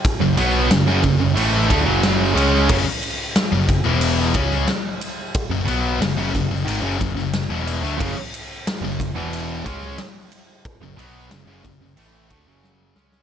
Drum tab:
CC |----------------|x---------------|----------------|x---------------|
RD |x-x-x-x-x-x-x-x-|--x-x-x-x-x-x-x-|x-x-x-x-x-x-x-x-|--x-x-x-x-x-x-x-|
SD |----o-------o---|----o------oo---|----o------oo---|----o------oo---|
BD |o-----o---o-----|o-----o---o-----|o-----o---o-----|o-----o---o-----|

CC |----------------|
RD |x-x-x-x-x-x-----|
SD |----o-------o-oo|
BD |o-----o---o-----|